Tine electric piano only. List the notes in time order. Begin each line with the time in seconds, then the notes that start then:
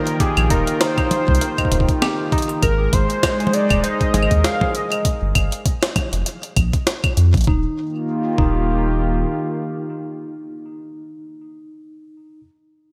Already playing: D#4 G4 A#4 D#5
0.20 G4
0.50 D#4
0.81 D#4
0.98 D#4
1.41 A#4
1.58 D#5
1.72 D#4
2.02 G4
2.32 D#4
2.62 G#4
2.79 G#4
3.23 D#5
3.40 G#5
3.53 G#4
3.84 C5
4.14 G#4
4.44 G#4
4.61 G#4
7.47 D#4
8.38 D#4